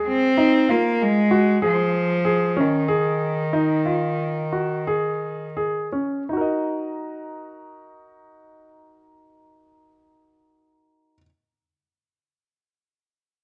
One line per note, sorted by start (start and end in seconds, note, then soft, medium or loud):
0.00 0.26 G#4 medium
0.07 0.72 C4 medium
0.37 0.63 D#4 medium
0.69 1.03 A#3 medium
0.69 1.20 F4 medium
1.02 1.63 G#3 medium
1.31 1.56 F#4 medium
1.62 2.62 F3 medium
1.62 2.13 G#4 medium
2.25 2.51 G#4 medium
2.57 5.59 D#3 medium
2.57 2.83 C#4 medium
2.88 3.41 G#4 medium
3.53 3.80 D#4 medium
3.86 4.41 F4 medium
4.52 4.81 F#4 soft
4.87 5.44 G#4 medium
5.57 5.86 G#4 medium
5.92 6.22 C#4 soft
6.29 11.14 D#4 soft
6.29 11.18 F#4 soft
6.37 11.22 A#4 soft
6.41 11.26 D#5 soft